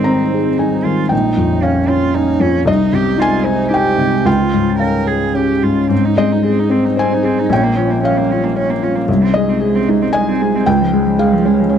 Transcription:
Already playing: felt piano G#2 D#3 D#5, ambient pad G#3 D#4 C5, cello C4
0.04 felt piano C4 A#5
0.34 felt piano G#4
0.58 felt piano C4 G#5, cello D#4
0.85 felt piano D#3, cello F4
1.09 felt piano A#1 G5, ambient pad F3 C#4 C#5, cello D#4
1.37 felt piano F2
1.63 felt piano C#4 F5, cello C#4
1.88 cello F4, felt piano C#5
2.15 felt piano C#4, cello D#4
2.40 felt piano F2, cello C#4
2.65 felt piano C2 D#5, ambient pad G#3 D#4 C5, cello D#4
2.92 felt piano C3, cello G4
3.17 felt piano D#4, cello F4
3.22 felt piano G#5
3.44 cello D#4, felt piano C5
3.70 felt piano D#4 G5, cello G4
3.98 felt piano C3
4.25 felt piano C#2 G5, ambient pad C#4 C#5, cello F4
4.53 felt piano G#2
4.79 felt piano C#4 F5, cello A#4
5.07 felt piano G#4, cello G#4
5.34 felt piano C#4, cello G4
5.63 felt piano G#2, cello F4
5.89 felt piano G#2, ambient pad G#3 D#4 C5, cello C4
6.05 cello D#4
6.17 felt piano G#3 D#5, cello C4
6.32 cello D#4
6.44 cello C4, felt piano G#4
6.59 cello D#4
6.70 felt piano C4, cello C4
6.85 cello D#4
6.97 cello C4, felt piano C5 G#5
7.14 cello D#4
7.23 cello C4, felt piano G#4
7.39 cello D#4
7.50 felt piano A#1 G5, ambient pad F3 C#4 C#5, cello C#4
7.64 cello A#3
7.76 felt piano F3, cello C#4
7.91 cello A#3
8.03 cello C#4, felt piano C#5 F5
8.18 cello A#3
8.31 cello C#4, felt piano F4
8.44 cello A#3
8.56 cello C#4, felt piano C#5
8.70 cello A#3
8.82 cello C#4, felt piano F4
8.96 cello A#3
9.08 felt piano C2, ambient pad G#3 D#4 C5, cello G#3
9.24 cello C4
9.34 felt piano G#3 D#5, cello G#3
9.49 cello C4
9.61 cello G#3, felt piano G#4
9.75 cello C4
9.89 cello G#3, felt piano D#4
10.03 cello C4
10.13 cello G#3, felt piano D#5 G#5
10.29 cello C4
10.41 cello G#3, felt piano G#4
10.56 cello C4
10.66 felt piano C#2 G5, cello G#3, ambient pad C#4 C#5
10.81 cello F3
10.93 felt piano G#3, cello G#3
11.06 cello F3
11.19 cello G#3, felt piano G#4 F5
11.33 cello F3
11.45 cello G#3, felt piano C#4
11.60 cello F3
11.69 cello G#3, felt piano C#5

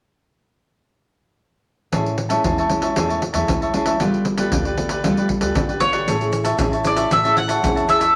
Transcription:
1.92 upright bass A1, nylon-string guitar A2 G#3 C#4 E4, cavaquinho G#4 C#5 E5 A5, pandeiro, surdo
2.06 pandeiro
2.18 muted cavaquinho stroke, pandeiro
2.29 nylon-string guitar G#3 C#4 E4, cavaquinho C#5 E5 A5, pandeiro
2.44 upright bass E2, nylon-string guitar E3, cavaquinho G#4 C#5 E5 A5, pandeiro, surdo
2.58 cavaquinho C#5 E5 A5, pandeiro
2.69 nylon-string guitar G#3 C#4 E4, pandeiro
2.82 cavaquinho C#5 E5 A5, pandeiro
2.96 upright bass E2, nylon-string guitar A2 G#3 C#4 E4, cavaquinho G#4 C#5 E5 A5, pandeiro, surdo
3.09 cavaquinho C#5 E5 A5, pandeiro
3.21 muted cavaquinho stroke, pandeiro
3.33 upright bass E2, nylon-string guitar G#3 C#4 E4, cavaquinho C#5 E5 A5, pandeiro
3.48 upright bass D2, nylon-string guitar E3, pandeiro, surdo
3.61 cavaquinho C#5 E5 A5, pandeiro
3.73 nylon-string guitar G#3 C#4 E4, cavaquinho G#4 C#5 E5 A5, pandeiro
3.86 cavaquinho C#5 E5 A5, pandeiro
4.00 upright bass G1, nylon-string guitar G3 B3 F4 A4, cavaquinho F4 G4 B4 D5, pandeiro, surdo
4.14 pandeiro
4.25 muted cavaquinho stroke, pandeiro
4.38 nylon-string guitar B3 F4 A4, cavaquinho G4 B4 D5, pandeiro
4.52 upright bass D2, nylon-string guitar D3, cavaquinho F4 G4 B4 D5, pandeiro, surdo
4.65 cavaquinho G4 B4 D5, pandeiro
4.77 nylon-string guitar B3 F4 A4, pandeiro
4.89 cavaquinho G4 B4 D5, pandeiro
5.04 upright bass D2, nylon-string guitar G3 B3 F4 A4, cavaquinho F4 G4 B4 D5, pandeiro, surdo
5.17 cavaquinho G4 B4 D5, pandeiro
5.29 muted cavaquinho stroke, pandeiro, surdo
5.41 upright bass D2, nylon-string guitar B3 F4 A4, cavaquinho G4 B4 D5, pandeiro
5.55 upright bass G1, nylon-string guitar D3, pandeiro, surdo
5.69 cavaquinho G4 B4 D5, pandeiro
5.80 nylon-string guitar B3 F4 A4, cavaquinho F4 G4 B4 D5, mandolin C#5, pandeiro
5.93 cavaquinho G4 B4 D5, pandeiro
6.07 upright bass A1, nylon-string guitar A3 C#4 E4 G#4, cavaquinho G#4 C#5 E5 A5, pandeiro, shaker, surdo
6.21 nylon-string guitar C#4 E4 G#4, pandeiro, shaker
6.32 muted cavaquinho stroke, pandeiro, shaker
6.44 cavaquinho C#5 E5 A5, pandeiro, shaker
6.58 upright bass A1, nylon-string guitar E3 C#4 E4 G#4, cavaquinho G#4 C#5 E5 A5, pandeiro, shaker, surdo
6.72 cavaquinho C#5 E5 A5, pandeiro, shaker
6.84 nylon-string guitar C#4 E4 G#4, mandolin D5, pandeiro, shaker
6.96 cavaquinho C#5 E5 A5, pandeiro, shaker
7.11 upright bass A1, nylon-string guitar A3, cavaquinho G#4 C#5 E5 A5, mandolin E5, pandeiro, shaker, surdo
7.24 nylon-string guitar C#4 E4 G#4, cavaquinho C#5 E5 A5, pandeiro, shaker
7.37 mandolin F#5, pandeiro
7.48 cavaquinho C#5 E5 A5, pandeiro, shaker
7.63 upright bass E2, nylon-string guitar E3 C#4 E4 G#4, pandeiro, shaker, surdo
7.76 cavaquinho C#5 E5 A5, pandeiro, shaker
7.88 nylon-string guitar C#4 E4 G#4, cavaquinho G#4 C#5 E5 A5, mandolin E5, pandeiro, shaker
7.99 cavaquinho C#5 E5 A5, pandeiro, shaker

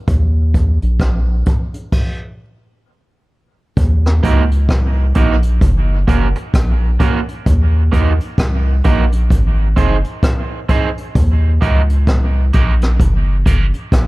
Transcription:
0.08 sub bass D#2, kick, closed hi-hat
0.54 kick, closed hi-hat
0.82 sub bass A#1, closed hi-hat
1.00 kick, cross-stick, closed hi-hat
1.46 kick, closed hi-hat
1.74 closed hi-hat
1.92 kick, crash
3.77 sub bass D#2, kick, closed hi-hat
4.06 cross-stick
4.23 sub bass C#2, clean electric guitar A#3 D#4 F#4 A#4, kick, closed hi-hat
4.51 closed hi-hat
4.69 sub bass C2, kick, cross-stick, closed hi-hat
5.15 sub bass A#1, clean electric guitar A#3 D#4 F#4 A#4, kick, closed hi-hat
5.43 closed hi-hat
5.61 sub bass F#1, kick, closed hi-hat
6.08 sub bass F#1, clean electric guitar A#3 C#4 F#4 A#4, kick, closed hi-hat
6.35 muted clean electric guitar stroke, closed hi-hat
6.54 sub bass A#1, kick, cross-stick, closed hi-hat
7.00 clean electric guitar A#3 C#4 F#4 A#4, kick, closed hi-hat
7.28 closed hi-hat
7.46 sub bass D#2, kick, closed hi-hat
7.92 sub bass D#2, clean electric guitar A#3 D#4 F#4 A#4, kick, closed hi-hat
8.20 closed hi-hat
8.38 sub bass C2, kick, cross-stick, closed hi-hat
8.84 sub bass A#1, clean electric guitar A#3 D#4 F#4 A#4, kick, closed hi-hat
9.12 closed hi-hat
9.30 sub bass G#1, kick, closed hi-hat
9.76 sub bass F#1, clean electric guitar C4 D#4 G#4 C5, kick, closed hi-hat
10.04 closed hi-hat
10.23 kick, cross-stick, closed hi-hat
10.69 clean electric guitar C4 D#4 G#4 C5, kick, closed hi-hat
10.98 closed hi-hat
11.15 sub bass D#2, kick, closed hi-hat
11.61 sub bass C#2, clean electric guitar A#3 D#4 F#4 A#4, kick, closed hi-hat
11.89 closed hi-hat
12.07 sub bass C2, kick, cross-stick, closed hi-hat
12.53 sub bass A#1, clean electric guitar A#3 D#4 F#4 A#4, kick, closed hi-hat
12.81 cross-stick, closed hi-hat
13.00 sub bass F#1, kick, closed hi-hat
13.46 sub bass F#1, clean electric guitar A#3 C#4 F#4 A#4, kick, closed hi-hat
13.74 closed hi-hat
13.92 sub bass A#1, kick, cross-stick, closed hi-hat

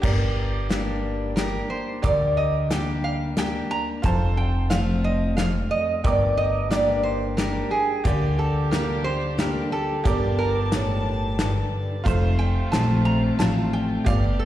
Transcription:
0.02 upright bass G1, steel-string acoustic guitar G2, honky-tonk piano G4 A#4 D5, kick, crash
0.69 steel-string acoustic guitar G3 A#3 D4 G4, snare, closed hi-hat
1.36 steel-string acoustic guitar G3 A#3 D4 G4, resonator guitar played with a steel bar A#4, snare, closed hi-hat
1.70 resonator guitar played with a steel bar C5
2.02 upright bass D2, steel-string acoustic guitar D3, honky-tonk piano G4 A#4 D6, resonator guitar played with a steel bar D5, kick, closed hi-hat
2.37 resonator guitar played with a steel bar D#5
2.70 steel-string acoustic guitar G3 A#3 D4 G4, resonator guitar played with a steel bar G5, snare, closed hi-hat
3.04 resonator guitar played with a steel bar F5
3.37 steel-string acoustic guitar G3 A#3 D4 G4, resonator guitar played with a steel bar G5, snare, closed hi-hat
3.71 resonator guitar played with a steel bar A#5
4.02 upright bass F1, steel-string acoustic guitar F2, honky-tonk piano F4 A4 C5, resonator guitar played with a steel bar A5, kick, closed hi-hat
4.37 resonator guitar played with a steel bar G5
4.70 steel-string acoustic guitar F3 A3 C4 F4, resonator guitar played with a steel bar F5, snare, closed hi-hat
5.04 resonator guitar played with a steel bar D#5
5.37 steel-string acoustic guitar F2, resonator guitar played with a steel bar F5, snare, closed hi-hat
5.71 resonator guitar played with a steel bar D#5
6.04 upright bass G1, steel-string acoustic guitar G2, honky-tonk piano A#4 G5 D6, resonator guitar played with a steel bar D5, kick, closed hi-hat
6.37 resonator guitar played with a steel bar D#5
6.70 steel-string acoustic guitar G3 A#3 D4 G4, resonator guitar played with a steel bar D5, snare, closed hi-hat
7.03 resonator guitar played with a steel bar C5
7.37 steel-string acoustic guitar G3 A#3 D4 G4, resonator guitar played with a steel bar A#4, snare, closed hi-hat
7.70 steel-string acoustic guitar D4 G4, resonator guitar played with a steel bar G#4
8.04 upright bass D2, steel-string acoustic guitar D3, string section D3 G3 D4 G4, honky-tonk piano A#3 G4 D5, resonator guitar played with a steel bar G4, kick, closed hi-hat
8.39 resonator guitar played with a steel bar A4
8.71 steel-string acoustic guitar G3 A#3 D4 G4, resonator guitar played with a steel bar A#4, snare, closed hi-hat
9.04 steel-string acoustic guitar D4 G4, resonator guitar played with a steel bar C5
9.38 steel-string acoustic guitar G3 A#3 D4 G4, resonator guitar played with a steel bar A#4, snare, closed hi-hat
9.72 steel-string acoustic guitar D4 G4, resonator guitar played with a steel bar A4
10.04 upright bass G1, steel-string acoustic guitar G2, honky-tonk piano G4 A#4 D5, resonator guitar played with a steel bar G4, string section A5, kick, closed hi-hat
10.39 resonator guitar played with a steel bar A#4
10.72 steel-string acoustic guitar A2, snare, closed hi-hat
11.39 steel-string acoustic guitar G2, snare, closed hi-hat
12.04 upright bass F1, steel-string acoustic guitar F2, string section C3 F3 A3 F4, honky-tonk piano A3 F4 C5, kick, closed hi-hat
12.39 resonator guitar played with a steel bar G5
12.72 upright bass A#1, steel-string acoustic guitar F3 A3 C4 F4, resonator guitar played with a steel bar A5, snare, closed hi-hat
13.05 resonator guitar played with a steel bar A#5
13.39 upright bass A1, steel-string acoustic guitar F3 A3 C4 F4, resonator guitar played with a steel bar A5, snare, closed hi-hat
13.73 resonator guitar played with a steel bar G5
14.05 upright bass G1, steel-string acoustic guitar G2, string section D3 G3 D4 G4, honky-tonk piano G4 D5, resonator guitar played with a steel bar F5, kick, closed hi-hat
14.39 resonator guitar played with a steel bar A4

